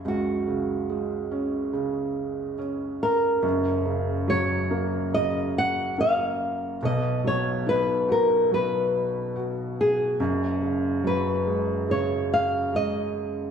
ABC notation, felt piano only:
X:1
M:4/4
L:1/8
Q:1/4=71
K:F#
V:1 name="Felt piano" clef=bass
[C,,C] C, G, C C,2 C2 | [F,,,F,,] C, F, A, C,2 A,2 | [B,,,B,,] F, D F F,2 F2 | [F,,,F,,] C, F, G, C,2 G,2 |]